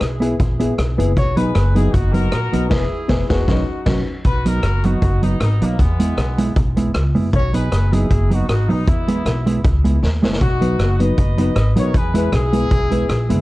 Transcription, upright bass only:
0.01 0.34 B1 medium
0.40 0.72 A#1 medium
0.78 0.96 B1 medium
0.99 1.14 F#1 medium
1.17 1.49 B1 loud
1.55 1.88 F#1 loud
1.94 2.27 F#1 loud
2.32 2.50 A#1 medium
2.53 2.68 B1 medium
2.71 2.85 E1 loud
3.09 3.23 E1 loud
3.30 3.42 E1 loud
3.48 3.62 B1 medium
3.86 4.00 B1 loud
4.25 4.58 B1 loud
4.63 4.96 F#1 medium
5.02 5.35 F#1 medium
5.40 5.58 G#1 loud
5.61 5.81 B1 medium
5.79 6.12 E2 loud
6.17 6.50 B1 loud
6.56 6.89 B1 loud
6.95 7.12 C#2 medium
7.15 7.31 F#1 medium
7.33 7.66 B1 loud
7.72 8.05 F#1 loud
8.10 8.43 F#1 loud
8.48 8.66 G#1 loud
8.69 8.84 B1 medium
8.87 9.20 E2 loud
9.26 9.58 B1 loud
9.65 9.97 C#2 medium
10.03 10.20 D#2 loud
10.23 10.38 F#1 medium
10.41 10.74 B1 loud
10.79 11.12 F#1 loud
11.18 11.51 F#1 medium
11.56 11.74 G#1 loud
11.76 11.91 B1 medium
11.94 12.27 E2 loud
12.32 12.65 B1 loud
12.71 13.04 B1 loud
13.09 13.27 A#1 medium
13.30 13.41 F#1 medium

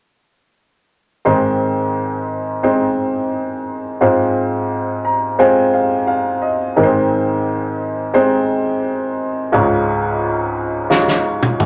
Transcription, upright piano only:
1.25 3.97 G#2 soft
1.25 3.97 D#3 soft
1.25 2.23 G#3 medium
1.25 2.23 C4 soft
1.25 2.23 D#4 medium
1.25 2.23 C5 medium
2.63 3.61 G#3 medium
2.63 3.61 C4 medium
2.63 3.61 D#4 medium
2.63 3.61 C5 medium
4.01 6.73 G#2 medium
4.01 4.99 G#3 medium
4.01 4.99 C4 soft
4.01 4.99 F4 medium
4.01 4.99 C5 medium
5.05 5.37 A#5 soft
5.39 6.37 G#3 medium
5.39 6.37 C4 medium
5.39 6.37 F4 medium
5.39 6.37 C5 medium
5.39 5.71 G#5 medium
5.73 6.06 F5 soft
6.07 6.40 F5 medium
6.42 6.74 D#5 medium
6.76 9.49 G#2 soft
6.76 9.49 D#3 medium
6.76 7.74 G#3 medium
6.76 7.75 C4 medium
6.76 7.75 D#4 medium
6.76 6.83 A#4 medium
6.83 7.78 C5 medium
8.14 9.12 G#3 medium
8.14 9.12 C4 medium
8.14 9.12 D#4 medium
8.14 9.12 C5 medium
9.52 11.66 C#2 medium
9.52 11.66 G#2 medium
9.52 10.50 G#3 medium
9.52 10.50 D#4 medium
9.52 10.51 F4 medium
9.52 10.51 C#5 medium
10.90 11.66 G#3 medium
10.90 11.66 D#4 medium
10.90 11.66 F4 medium
10.90 11.60 C#5 medium

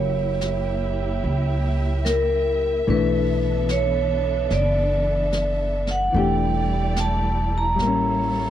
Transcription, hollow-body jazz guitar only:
0.00 2.86 F#3 soft
0.00 2.87 A#3 soft
0.00 2.87 E4 soft
0.00 2.87 G4 soft
2.87 6.11 E3 soft
2.87 6.14 A3 soft
2.87 6.15 D4 medium
6.13 7.75 E3 soft
6.13 7.79 A3 soft
6.17 7.80 D4 medium
6.17 7.81 G4 medium
7.76 8.50 G3 soft
7.82 8.50 A#3 soft
7.87 8.50 C#4 soft

